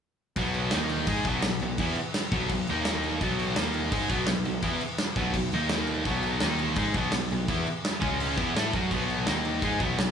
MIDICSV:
0, 0, Header, 1, 4, 480
1, 0, Start_track
1, 0, Key_signature, 5, "major"
1, 0, Tempo, 355872
1, 500, Time_signature, 4, 2, 24, 8
1, 13636, End_track
2, 0, Start_track
2, 0, Title_t, "Distorted electric guitar"
2, 0, Program_c, 0, 30
2, 497, Note_on_c, 0, 47, 82
2, 516, Note_on_c, 0, 54, 95
2, 527, Note_on_c, 0, 59, 92
2, 971, Note_off_c, 0, 47, 0
2, 980, Note_off_c, 0, 54, 0
2, 982, Note_on_c, 0, 51, 92
2, 985, Note_off_c, 0, 59, 0
2, 986, Note_on_c, 0, 58, 96
2, 1001, Note_on_c, 0, 63, 104
2, 1448, Note_off_c, 0, 58, 0
2, 1449, Note_off_c, 0, 63, 0
2, 1453, Note_off_c, 0, 51, 0
2, 1453, Note_on_c, 0, 56, 92
2, 1465, Note_on_c, 0, 63, 103
2, 1474, Note_on_c, 0, 68, 102
2, 1688, Note_off_c, 0, 56, 0
2, 1694, Note_off_c, 0, 63, 0
2, 1699, Note_off_c, 0, 68, 0
2, 1708, Note_on_c, 0, 47, 95
2, 1717, Note_on_c, 0, 54, 100
2, 1723, Note_on_c, 0, 59, 111
2, 1922, Note_off_c, 0, 47, 0
2, 1924, Note_off_c, 0, 54, 0
2, 1938, Note_on_c, 0, 47, 73
2, 1940, Note_on_c, 0, 54, 71
2, 1943, Note_off_c, 0, 59, 0
2, 2130, Note_off_c, 0, 47, 0
2, 2131, Note_off_c, 0, 54, 0
2, 2187, Note_on_c, 0, 47, 61
2, 2189, Note_on_c, 0, 54, 76
2, 2374, Note_off_c, 0, 47, 0
2, 2375, Note_off_c, 0, 54, 0
2, 2419, Note_on_c, 0, 52, 96
2, 2429, Note_on_c, 0, 59, 104
2, 2435, Note_on_c, 0, 64, 98
2, 2651, Note_off_c, 0, 52, 0
2, 2656, Note_off_c, 0, 59, 0
2, 2659, Note_off_c, 0, 64, 0
2, 3129, Note_on_c, 0, 47, 92
2, 3145, Note_on_c, 0, 54, 98
2, 3153, Note_on_c, 0, 59, 98
2, 3365, Note_off_c, 0, 47, 0
2, 3373, Note_off_c, 0, 54, 0
2, 3377, Note_off_c, 0, 59, 0
2, 3397, Note_on_c, 0, 47, 66
2, 3401, Note_on_c, 0, 54, 74
2, 3578, Note_off_c, 0, 47, 0
2, 3580, Note_off_c, 0, 54, 0
2, 3635, Note_on_c, 0, 51, 92
2, 3645, Note_on_c, 0, 58, 92
2, 3651, Note_on_c, 0, 63, 110
2, 4338, Note_off_c, 0, 51, 0
2, 4343, Note_off_c, 0, 58, 0
2, 4346, Note_off_c, 0, 63, 0
2, 4346, Note_on_c, 0, 47, 106
2, 4357, Note_on_c, 0, 54, 102
2, 4361, Note_on_c, 0, 59, 108
2, 4812, Note_off_c, 0, 47, 0
2, 4817, Note_on_c, 0, 51, 91
2, 4819, Note_off_c, 0, 54, 0
2, 4821, Note_off_c, 0, 59, 0
2, 4832, Note_on_c, 0, 58, 87
2, 4835, Note_on_c, 0, 63, 101
2, 5281, Note_off_c, 0, 63, 0
2, 5284, Note_off_c, 0, 58, 0
2, 5289, Note_off_c, 0, 51, 0
2, 5289, Note_on_c, 0, 56, 103
2, 5297, Note_on_c, 0, 63, 90
2, 5307, Note_on_c, 0, 68, 105
2, 5518, Note_on_c, 0, 47, 82
2, 5524, Note_off_c, 0, 56, 0
2, 5529, Note_off_c, 0, 63, 0
2, 5529, Note_on_c, 0, 54, 100
2, 5534, Note_off_c, 0, 68, 0
2, 5537, Note_on_c, 0, 59, 103
2, 5759, Note_off_c, 0, 47, 0
2, 5765, Note_off_c, 0, 54, 0
2, 5768, Note_off_c, 0, 59, 0
2, 5776, Note_on_c, 0, 47, 65
2, 5790, Note_on_c, 0, 54, 73
2, 5967, Note_off_c, 0, 47, 0
2, 5974, Note_off_c, 0, 54, 0
2, 6003, Note_on_c, 0, 47, 72
2, 6009, Note_on_c, 0, 54, 72
2, 6201, Note_off_c, 0, 47, 0
2, 6204, Note_off_c, 0, 54, 0
2, 6239, Note_on_c, 0, 52, 98
2, 6250, Note_on_c, 0, 59, 102
2, 6254, Note_on_c, 0, 64, 102
2, 6479, Note_off_c, 0, 52, 0
2, 6485, Note_off_c, 0, 59, 0
2, 6487, Note_off_c, 0, 64, 0
2, 6967, Note_on_c, 0, 47, 79
2, 6981, Note_on_c, 0, 54, 92
2, 6985, Note_on_c, 0, 59, 98
2, 7203, Note_off_c, 0, 47, 0
2, 7211, Note_off_c, 0, 54, 0
2, 7213, Note_off_c, 0, 59, 0
2, 7228, Note_on_c, 0, 47, 59
2, 7237, Note_on_c, 0, 54, 70
2, 7413, Note_off_c, 0, 47, 0
2, 7418, Note_off_c, 0, 54, 0
2, 7462, Note_on_c, 0, 51, 93
2, 7467, Note_on_c, 0, 58, 98
2, 7477, Note_on_c, 0, 63, 108
2, 8171, Note_off_c, 0, 51, 0
2, 8173, Note_off_c, 0, 58, 0
2, 8178, Note_off_c, 0, 63, 0
2, 8184, Note_on_c, 0, 47, 95
2, 8186, Note_on_c, 0, 54, 100
2, 8201, Note_on_c, 0, 59, 91
2, 8652, Note_off_c, 0, 47, 0
2, 8653, Note_off_c, 0, 54, 0
2, 8658, Note_on_c, 0, 51, 95
2, 8661, Note_off_c, 0, 59, 0
2, 8668, Note_on_c, 0, 58, 91
2, 8673, Note_on_c, 0, 63, 119
2, 9129, Note_off_c, 0, 51, 0
2, 9134, Note_off_c, 0, 58, 0
2, 9137, Note_off_c, 0, 63, 0
2, 9139, Note_on_c, 0, 56, 91
2, 9154, Note_on_c, 0, 63, 95
2, 9157, Note_on_c, 0, 68, 96
2, 9370, Note_off_c, 0, 56, 0
2, 9377, Note_off_c, 0, 63, 0
2, 9379, Note_off_c, 0, 68, 0
2, 9387, Note_on_c, 0, 47, 90
2, 9396, Note_on_c, 0, 54, 99
2, 9411, Note_on_c, 0, 59, 90
2, 9614, Note_off_c, 0, 47, 0
2, 9618, Note_off_c, 0, 54, 0
2, 9626, Note_off_c, 0, 59, 0
2, 9633, Note_on_c, 0, 47, 62
2, 9639, Note_on_c, 0, 54, 75
2, 9816, Note_off_c, 0, 47, 0
2, 9819, Note_off_c, 0, 54, 0
2, 9874, Note_on_c, 0, 47, 66
2, 9879, Note_on_c, 0, 54, 78
2, 10056, Note_off_c, 0, 47, 0
2, 10059, Note_off_c, 0, 54, 0
2, 10103, Note_on_c, 0, 52, 87
2, 10116, Note_on_c, 0, 59, 97
2, 10120, Note_on_c, 0, 64, 101
2, 10332, Note_off_c, 0, 52, 0
2, 10338, Note_off_c, 0, 59, 0
2, 10341, Note_off_c, 0, 64, 0
2, 10805, Note_on_c, 0, 49, 85
2, 10816, Note_on_c, 0, 56, 97
2, 10822, Note_on_c, 0, 61, 109
2, 11284, Note_off_c, 0, 49, 0
2, 11289, Note_off_c, 0, 56, 0
2, 11292, Note_off_c, 0, 61, 0
2, 11299, Note_on_c, 0, 52, 97
2, 11310, Note_on_c, 0, 59, 99
2, 11318, Note_on_c, 0, 64, 107
2, 11530, Note_off_c, 0, 52, 0
2, 11536, Note_off_c, 0, 59, 0
2, 11540, Note_off_c, 0, 64, 0
2, 11549, Note_on_c, 0, 57, 91
2, 11555, Note_on_c, 0, 64, 109
2, 11565, Note_on_c, 0, 69, 118
2, 11776, Note_off_c, 0, 57, 0
2, 11779, Note_off_c, 0, 64, 0
2, 11784, Note_off_c, 0, 69, 0
2, 11796, Note_on_c, 0, 54, 99
2, 11806, Note_on_c, 0, 61, 110
2, 11806, Note_on_c, 0, 66, 102
2, 12019, Note_off_c, 0, 54, 0
2, 12024, Note_off_c, 0, 61, 0
2, 12024, Note_off_c, 0, 66, 0
2, 12035, Note_on_c, 0, 47, 86
2, 12050, Note_on_c, 0, 54, 89
2, 12051, Note_on_c, 0, 59, 108
2, 12499, Note_off_c, 0, 47, 0
2, 12506, Note_off_c, 0, 54, 0
2, 12507, Note_off_c, 0, 59, 0
2, 12510, Note_on_c, 0, 51, 103
2, 12517, Note_on_c, 0, 58, 103
2, 12528, Note_on_c, 0, 63, 100
2, 12977, Note_off_c, 0, 51, 0
2, 12980, Note_off_c, 0, 58, 0
2, 12986, Note_off_c, 0, 63, 0
2, 12992, Note_on_c, 0, 56, 83
2, 13013, Note_on_c, 0, 63, 104
2, 13013, Note_on_c, 0, 68, 103
2, 13218, Note_off_c, 0, 56, 0
2, 13220, Note_on_c, 0, 47, 91
2, 13224, Note_on_c, 0, 54, 96
2, 13228, Note_off_c, 0, 63, 0
2, 13228, Note_off_c, 0, 68, 0
2, 13233, Note_on_c, 0, 59, 106
2, 13452, Note_off_c, 0, 47, 0
2, 13454, Note_off_c, 0, 54, 0
2, 13459, Note_off_c, 0, 59, 0
2, 13469, Note_on_c, 0, 47, 74
2, 13474, Note_on_c, 0, 54, 78
2, 13636, Note_off_c, 0, 47, 0
2, 13636, Note_off_c, 0, 54, 0
2, 13636, End_track
3, 0, Start_track
3, 0, Title_t, "Picked electric bass"
3, 0, Program_c, 1, 34
3, 492, Note_on_c, 1, 35, 85
3, 941, Note_off_c, 1, 35, 0
3, 984, Note_on_c, 1, 39, 97
3, 1428, Note_off_c, 1, 39, 0
3, 1453, Note_on_c, 1, 44, 99
3, 1678, Note_off_c, 1, 44, 0
3, 1693, Note_on_c, 1, 35, 101
3, 1918, Note_off_c, 1, 35, 0
3, 1945, Note_on_c, 1, 35, 70
3, 2165, Note_off_c, 1, 35, 0
3, 2182, Note_on_c, 1, 35, 76
3, 2398, Note_off_c, 1, 35, 0
3, 2407, Note_on_c, 1, 40, 91
3, 2635, Note_off_c, 1, 40, 0
3, 3126, Note_on_c, 1, 35, 94
3, 3354, Note_off_c, 1, 35, 0
3, 3371, Note_on_c, 1, 35, 80
3, 3596, Note_off_c, 1, 35, 0
3, 3620, Note_on_c, 1, 39, 94
3, 4287, Note_off_c, 1, 39, 0
3, 4333, Note_on_c, 1, 35, 90
3, 4780, Note_off_c, 1, 35, 0
3, 4827, Note_on_c, 1, 39, 99
3, 5268, Note_off_c, 1, 39, 0
3, 5285, Note_on_c, 1, 44, 102
3, 5513, Note_off_c, 1, 44, 0
3, 5526, Note_on_c, 1, 35, 98
3, 5753, Note_off_c, 1, 35, 0
3, 5780, Note_on_c, 1, 35, 78
3, 6000, Note_off_c, 1, 35, 0
3, 6025, Note_on_c, 1, 35, 78
3, 6237, Note_off_c, 1, 35, 0
3, 6245, Note_on_c, 1, 40, 95
3, 6473, Note_off_c, 1, 40, 0
3, 6960, Note_on_c, 1, 35, 97
3, 7190, Note_off_c, 1, 35, 0
3, 7204, Note_on_c, 1, 35, 80
3, 7432, Note_off_c, 1, 35, 0
3, 7460, Note_on_c, 1, 39, 94
3, 8127, Note_off_c, 1, 39, 0
3, 8168, Note_on_c, 1, 35, 85
3, 8617, Note_off_c, 1, 35, 0
3, 8666, Note_on_c, 1, 39, 96
3, 9107, Note_off_c, 1, 39, 0
3, 9131, Note_on_c, 1, 44, 94
3, 9356, Note_off_c, 1, 44, 0
3, 9371, Note_on_c, 1, 35, 103
3, 9596, Note_off_c, 1, 35, 0
3, 9627, Note_on_c, 1, 35, 75
3, 9844, Note_off_c, 1, 35, 0
3, 9864, Note_on_c, 1, 35, 73
3, 10083, Note_off_c, 1, 35, 0
3, 10094, Note_on_c, 1, 40, 89
3, 10318, Note_off_c, 1, 40, 0
3, 10818, Note_on_c, 1, 37, 89
3, 11264, Note_off_c, 1, 37, 0
3, 11303, Note_on_c, 1, 40, 96
3, 11523, Note_off_c, 1, 40, 0
3, 11535, Note_on_c, 1, 45, 84
3, 11759, Note_off_c, 1, 45, 0
3, 11782, Note_on_c, 1, 42, 92
3, 12003, Note_off_c, 1, 42, 0
3, 12022, Note_on_c, 1, 35, 90
3, 12466, Note_off_c, 1, 35, 0
3, 12506, Note_on_c, 1, 39, 92
3, 12949, Note_off_c, 1, 39, 0
3, 12982, Note_on_c, 1, 44, 103
3, 13204, Note_off_c, 1, 44, 0
3, 13221, Note_on_c, 1, 35, 89
3, 13443, Note_off_c, 1, 35, 0
3, 13480, Note_on_c, 1, 35, 81
3, 13636, Note_off_c, 1, 35, 0
3, 13636, End_track
4, 0, Start_track
4, 0, Title_t, "Drums"
4, 484, Note_on_c, 9, 49, 80
4, 488, Note_on_c, 9, 36, 98
4, 619, Note_off_c, 9, 49, 0
4, 623, Note_off_c, 9, 36, 0
4, 726, Note_on_c, 9, 49, 56
4, 861, Note_off_c, 9, 49, 0
4, 953, Note_on_c, 9, 49, 89
4, 958, Note_on_c, 9, 38, 116
4, 1088, Note_off_c, 9, 49, 0
4, 1093, Note_off_c, 9, 38, 0
4, 1204, Note_on_c, 9, 49, 64
4, 1339, Note_off_c, 9, 49, 0
4, 1438, Note_on_c, 9, 49, 84
4, 1446, Note_on_c, 9, 36, 111
4, 1573, Note_off_c, 9, 49, 0
4, 1581, Note_off_c, 9, 36, 0
4, 1679, Note_on_c, 9, 49, 64
4, 1685, Note_on_c, 9, 36, 109
4, 1814, Note_off_c, 9, 49, 0
4, 1820, Note_off_c, 9, 36, 0
4, 1917, Note_on_c, 9, 49, 88
4, 1922, Note_on_c, 9, 38, 112
4, 2051, Note_off_c, 9, 49, 0
4, 2057, Note_off_c, 9, 38, 0
4, 2153, Note_on_c, 9, 49, 55
4, 2288, Note_off_c, 9, 49, 0
4, 2404, Note_on_c, 9, 36, 99
4, 2404, Note_on_c, 9, 49, 82
4, 2539, Note_off_c, 9, 36, 0
4, 2539, Note_off_c, 9, 49, 0
4, 2634, Note_on_c, 9, 49, 60
4, 2768, Note_off_c, 9, 49, 0
4, 2885, Note_on_c, 9, 49, 88
4, 2890, Note_on_c, 9, 38, 111
4, 3020, Note_off_c, 9, 49, 0
4, 3025, Note_off_c, 9, 38, 0
4, 3126, Note_on_c, 9, 49, 67
4, 3127, Note_on_c, 9, 36, 113
4, 3261, Note_off_c, 9, 49, 0
4, 3262, Note_off_c, 9, 36, 0
4, 3363, Note_on_c, 9, 49, 83
4, 3367, Note_on_c, 9, 36, 94
4, 3498, Note_off_c, 9, 49, 0
4, 3502, Note_off_c, 9, 36, 0
4, 3606, Note_on_c, 9, 49, 62
4, 3741, Note_off_c, 9, 49, 0
4, 3841, Note_on_c, 9, 49, 86
4, 3847, Note_on_c, 9, 38, 119
4, 3976, Note_off_c, 9, 49, 0
4, 3982, Note_off_c, 9, 38, 0
4, 4097, Note_on_c, 9, 49, 54
4, 4231, Note_off_c, 9, 49, 0
4, 4330, Note_on_c, 9, 36, 105
4, 4334, Note_on_c, 9, 49, 74
4, 4465, Note_off_c, 9, 36, 0
4, 4469, Note_off_c, 9, 49, 0
4, 4571, Note_on_c, 9, 49, 56
4, 4706, Note_off_c, 9, 49, 0
4, 4800, Note_on_c, 9, 49, 87
4, 4805, Note_on_c, 9, 38, 124
4, 4934, Note_off_c, 9, 49, 0
4, 4940, Note_off_c, 9, 38, 0
4, 5041, Note_on_c, 9, 49, 66
4, 5176, Note_off_c, 9, 49, 0
4, 5282, Note_on_c, 9, 49, 88
4, 5287, Note_on_c, 9, 36, 113
4, 5417, Note_off_c, 9, 49, 0
4, 5422, Note_off_c, 9, 36, 0
4, 5525, Note_on_c, 9, 36, 111
4, 5529, Note_on_c, 9, 49, 69
4, 5660, Note_off_c, 9, 36, 0
4, 5664, Note_off_c, 9, 49, 0
4, 5750, Note_on_c, 9, 49, 90
4, 5755, Note_on_c, 9, 38, 118
4, 5885, Note_off_c, 9, 49, 0
4, 5890, Note_off_c, 9, 38, 0
4, 6003, Note_on_c, 9, 49, 58
4, 6138, Note_off_c, 9, 49, 0
4, 6236, Note_on_c, 9, 49, 77
4, 6241, Note_on_c, 9, 36, 100
4, 6371, Note_off_c, 9, 49, 0
4, 6376, Note_off_c, 9, 36, 0
4, 6483, Note_on_c, 9, 49, 64
4, 6618, Note_off_c, 9, 49, 0
4, 6718, Note_on_c, 9, 49, 83
4, 6723, Note_on_c, 9, 38, 118
4, 6853, Note_off_c, 9, 49, 0
4, 6858, Note_off_c, 9, 38, 0
4, 6958, Note_on_c, 9, 49, 63
4, 6960, Note_on_c, 9, 36, 111
4, 7093, Note_off_c, 9, 49, 0
4, 7095, Note_off_c, 9, 36, 0
4, 7200, Note_on_c, 9, 36, 94
4, 7205, Note_on_c, 9, 49, 87
4, 7335, Note_off_c, 9, 36, 0
4, 7340, Note_off_c, 9, 49, 0
4, 7446, Note_on_c, 9, 49, 60
4, 7581, Note_off_c, 9, 49, 0
4, 7676, Note_on_c, 9, 49, 82
4, 7681, Note_on_c, 9, 38, 108
4, 7811, Note_off_c, 9, 49, 0
4, 7816, Note_off_c, 9, 38, 0
4, 7917, Note_on_c, 9, 49, 57
4, 8052, Note_off_c, 9, 49, 0
4, 8161, Note_on_c, 9, 49, 68
4, 8165, Note_on_c, 9, 36, 94
4, 8296, Note_off_c, 9, 49, 0
4, 8300, Note_off_c, 9, 36, 0
4, 8398, Note_on_c, 9, 49, 56
4, 8533, Note_off_c, 9, 49, 0
4, 8633, Note_on_c, 9, 49, 88
4, 8639, Note_on_c, 9, 38, 116
4, 8768, Note_off_c, 9, 49, 0
4, 8773, Note_off_c, 9, 38, 0
4, 8884, Note_on_c, 9, 49, 65
4, 9019, Note_off_c, 9, 49, 0
4, 9114, Note_on_c, 9, 49, 86
4, 9125, Note_on_c, 9, 36, 117
4, 9249, Note_off_c, 9, 49, 0
4, 9260, Note_off_c, 9, 36, 0
4, 9357, Note_on_c, 9, 49, 64
4, 9367, Note_on_c, 9, 36, 110
4, 9492, Note_off_c, 9, 49, 0
4, 9502, Note_off_c, 9, 36, 0
4, 9596, Note_on_c, 9, 49, 87
4, 9602, Note_on_c, 9, 38, 122
4, 9731, Note_off_c, 9, 49, 0
4, 9737, Note_off_c, 9, 38, 0
4, 9852, Note_on_c, 9, 49, 62
4, 9987, Note_off_c, 9, 49, 0
4, 10094, Note_on_c, 9, 36, 101
4, 10097, Note_on_c, 9, 49, 80
4, 10229, Note_off_c, 9, 36, 0
4, 10232, Note_off_c, 9, 49, 0
4, 10340, Note_on_c, 9, 49, 59
4, 10475, Note_off_c, 9, 49, 0
4, 10581, Note_on_c, 9, 49, 86
4, 10586, Note_on_c, 9, 38, 122
4, 10716, Note_off_c, 9, 49, 0
4, 10721, Note_off_c, 9, 38, 0
4, 10815, Note_on_c, 9, 36, 115
4, 10820, Note_on_c, 9, 49, 66
4, 10950, Note_off_c, 9, 36, 0
4, 10955, Note_off_c, 9, 49, 0
4, 11064, Note_on_c, 9, 49, 86
4, 11198, Note_off_c, 9, 49, 0
4, 11297, Note_on_c, 9, 36, 111
4, 11308, Note_on_c, 9, 49, 61
4, 11432, Note_off_c, 9, 36, 0
4, 11443, Note_off_c, 9, 49, 0
4, 11548, Note_on_c, 9, 49, 78
4, 11553, Note_on_c, 9, 38, 110
4, 11683, Note_off_c, 9, 49, 0
4, 11688, Note_off_c, 9, 38, 0
4, 11781, Note_on_c, 9, 36, 104
4, 11796, Note_on_c, 9, 49, 55
4, 11916, Note_off_c, 9, 36, 0
4, 11931, Note_off_c, 9, 49, 0
4, 12019, Note_on_c, 9, 36, 96
4, 12027, Note_on_c, 9, 49, 77
4, 12154, Note_off_c, 9, 36, 0
4, 12162, Note_off_c, 9, 49, 0
4, 12272, Note_on_c, 9, 49, 56
4, 12406, Note_off_c, 9, 49, 0
4, 12496, Note_on_c, 9, 49, 73
4, 12501, Note_on_c, 9, 38, 117
4, 12631, Note_off_c, 9, 49, 0
4, 12636, Note_off_c, 9, 38, 0
4, 12743, Note_on_c, 9, 49, 61
4, 12878, Note_off_c, 9, 49, 0
4, 12979, Note_on_c, 9, 36, 108
4, 12985, Note_on_c, 9, 49, 81
4, 13114, Note_off_c, 9, 36, 0
4, 13120, Note_off_c, 9, 49, 0
4, 13220, Note_on_c, 9, 36, 111
4, 13220, Note_on_c, 9, 49, 64
4, 13354, Note_off_c, 9, 49, 0
4, 13355, Note_off_c, 9, 36, 0
4, 13465, Note_on_c, 9, 49, 78
4, 13470, Note_on_c, 9, 38, 112
4, 13600, Note_off_c, 9, 49, 0
4, 13605, Note_off_c, 9, 38, 0
4, 13636, End_track
0, 0, End_of_file